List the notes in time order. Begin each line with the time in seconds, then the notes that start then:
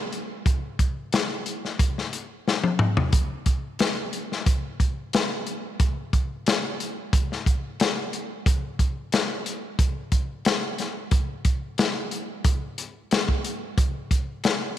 0.12 closed hi-hat
0.46 kick, closed hi-hat
0.79 kick, closed hi-hat
1.13 snare, closed hi-hat
1.46 closed hi-hat
1.65 snare
1.79 kick, closed hi-hat
1.98 snare
2.13 closed hi-hat
2.48 snare
2.64 high tom
2.79 mid tom
2.97 floor tom
3.13 kick, closed hi-hat
3.46 kick, closed hi-hat
3.79 snare, closed hi-hat
4.13 closed hi-hat
4.32 snare
4.46 kick, closed hi-hat
4.80 kick, closed hi-hat
5.13 snare, closed hi-hat
5.47 closed hi-hat
5.80 kick, closed hi-hat
6.13 kick, closed hi-hat
6.46 snare, closed hi-hat
6.80 closed hi-hat
7.13 kick, closed hi-hat
7.32 snare
7.46 kick, closed hi-hat
7.80 snare, closed hi-hat
8.13 closed hi-hat
8.46 kick, closed hi-hat
8.79 kick, closed hi-hat
9.12 snare, closed hi-hat
9.46 closed hi-hat
9.79 kick, closed hi-hat
10.12 kick, closed hi-hat
10.45 snare, closed hi-hat
10.78 snare, closed hi-hat
11.11 kick, closed hi-hat
11.45 kick, closed hi-hat
11.78 snare, closed hi-hat
12.11 closed hi-hat
12.44 kick, closed hi-hat
12.78 closed hi-hat
13.11 snare, closed hi-hat
13.29 kick
13.44 closed hi-hat
13.78 kick, closed hi-hat
14.11 kick, closed hi-hat
14.44 snare, closed hi-hat